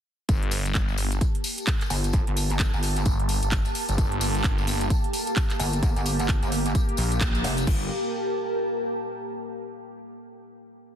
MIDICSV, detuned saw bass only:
0, 0, Header, 1, 2, 480
1, 0, Start_track
1, 0, Key_signature, -2, "minor"
1, 0, Tempo, 461538
1, 300, Time_signature, 4, 2, 24, 8
1, 11392, End_track
2, 0, Start_track
2, 0, Title_t, "Detuned saw bass"
2, 0, Program_c, 0, 39
2, 300, Note_on_c, 0, 31, 98
2, 764, Note_off_c, 0, 31, 0
2, 780, Note_on_c, 0, 31, 98
2, 1244, Note_off_c, 0, 31, 0
2, 3180, Note_on_c, 0, 31, 98
2, 3540, Note_off_c, 0, 31, 0
2, 3563, Note_on_c, 0, 31, 101
2, 3780, Note_off_c, 0, 31, 0
2, 4044, Note_on_c, 0, 31, 96
2, 4125, Note_off_c, 0, 31, 0
2, 4140, Note_on_c, 0, 31, 99
2, 4605, Note_off_c, 0, 31, 0
2, 4620, Note_on_c, 0, 31, 99
2, 5084, Note_off_c, 0, 31, 0
2, 7259, Note_on_c, 0, 34, 104
2, 7724, Note_off_c, 0, 34, 0
2, 7979, Note_on_c, 0, 31, 100
2, 8203, Note_off_c, 0, 31, 0
2, 11392, End_track
0, 0, End_of_file